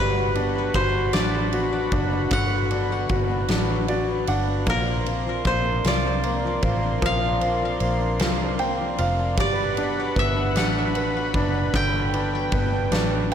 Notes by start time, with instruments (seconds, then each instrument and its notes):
Already playing: fingered electric bass G1, steel-string acoustic guitar F#3 D4, grand piano G3, analog synth pad F#4 F#5 B5
0.00 koto B4
0.16 steel-string acoustic guitar F#3
0.35 steel-string acoustic guitar B3, grand piano D4, ride
0.55 steel-string acoustic guitar F#3
0.74 fingered electric bass G1, grand piano F#4, koto C5, kick, ride
0.95 steel-string acoustic guitar D4
1.13 fingered electric bass A1, steel-string acoustic guitar F#3, grand piano D4, koto D5, snare, ride
1.34 steel-string acoustic guitar F#3
1.53 steel-string acoustic guitar B3, grand piano F#4, ride
1.73 steel-string acoustic guitar F#3
1.92 fingered electric bass F#1, steel-string acoustic guitar B3, grand piano D4, kick, ride
2.12 steel-string acoustic guitar D4
2.31 fingered electric bass G1, grand piano D3, steel-string acoustic guitar F#3, koto F#5, kick, ride
2.52 steel-string acoustic guitar F#3
2.71 steel-string acoustic guitar B3, grand piano D4, ride
2.90 steel-string acoustic guitar F#3
3.09 fingered electric bass G1, steel-string acoustic guitar B3, grand piano F#4, kick, ride
3.30 steel-string acoustic guitar D4
3.48 fingered electric bass A1, steel-string acoustic guitar F#3, grand piano D4, snare, ride
3.70 steel-string acoustic guitar F#3
3.88 steel-string acoustic guitar B3, grand piano F#4 D5, ride
4.09 steel-string acoustic guitar F#3
4.27 fingered electric bass G1, steel-string acoustic guitar B3, grand piano D4 F#5, ride
4.48 steel-string acoustic guitar D4
4.67 fingered electric bass A#1, steel-string acoustic guitar F3, grand piano A#3, analog synth pad A#4 D5 C6, koto A#4, kick, ride
4.87 steel-string acoustic guitar F3
5.06 steel-string acoustic guitar C4, grand piano F4, ride
5.26 steel-string acoustic guitar F3
5.45 fingered electric bass A#1, grand piano A#3, steel-string acoustic guitar C4, koto C5, kick, ride
5.65 steel-string acoustic guitar D4
5.84 fingered electric bass C2, steel-string acoustic guitar F3, grand piano F4, koto D5, snare, ride
6.05 steel-string acoustic guitar F3
6.23 grand piano A#3, steel-string acoustic guitar C4, ride
6.44 steel-string acoustic guitar F3
6.63 fingered electric bass A1, steel-string acoustic guitar C4, grand piano F4, kick, ride
6.83 steel-string acoustic guitar D4
7.02 fingered electric bass A#1, grand piano F3, steel-string acoustic guitar F3, koto F5, kick, ride
7.22 steel-string acoustic guitar F3
7.41 steel-string acoustic guitar C4, grand piano F4, ride
7.62 steel-string acoustic guitar F3
7.80 fingered electric bass A#1, grand piano A#3, steel-string acoustic guitar C4, ride
8.00 steel-string acoustic guitar D4
8.19 fingered electric bass C2, steel-string acoustic guitar F3, grand piano F4, snare, ride
8.40 steel-string acoustic guitar F3
8.59 grand piano A#3 G5, steel-string acoustic guitar C4, ride
8.79 steel-string acoustic guitar F3
8.98 fingered electric bass F1, steel-string acoustic guitar C4, grand piano F4 F5, ride
9.19 steel-string acoustic guitar D4
9.37 fingered electric bass G1, steel-string acoustic guitar F#3, grand piano G3, analog synth pad B4 F#5 B5, koto D5, kick, ride
9.58 steel-string acoustic guitar F#3
9.77 steel-string acoustic guitar B3, grand piano D4, ride
9.97 steel-string acoustic guitar F#3
10.16 fingered electric bass G1, steel-string acoustic guitar B3, grand piano B4, koto E5, kick, ride
10.36 steel-string acoustic guitar D4
10.55 fingered electric bass A1, steel-string acoustic guitar F#3, grand piano D4, koto F#5, snare, ride
10.75 steel-string acoustic guitar F#3
10.95 steel-string acoustic guitar B3, grand piano B4, ride
11.14 steel-string acoustic guitar F#3
11.34 fingered electric bass F#1, steel-string acoustic guitar B3, grand piano D4, kick, ride
11.54 steel-string acoustic guitar D4
11.74 fingered electric bass G1, grand piano D3, steel-string acoustic guitar F#3, analog synth pad G5, koto G5, kick, ride
11.94 steel-string acoustic guitar F#3
12.14 steel-string acoustic guitar B3, grand piano D4, ride
12.33 steel-string acoustic guitar F#3
12.52 fingered electric bass G1, steel-string acoustic guitar B3, grand piano B4, kick, ride
12.72 steel-string acoustic guitar D4
12.91 fingered electric bass A1, steel-string acoustic guitar F#3, grand piano D4, snare, ride
13.12 steel-string acoustic guitar F#3